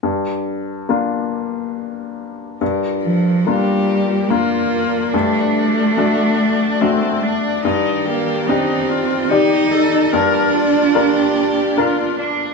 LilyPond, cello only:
\new Staff \with { instrumentName = "Cello" } { \time 3/4 \key g \minor \tempo 4 = 72 r2. | r8 f8 g4 bes4 | a2~ a8 r8 | r8 bes8 c'4 ees'4 |
d'2~ d'8 r8 | }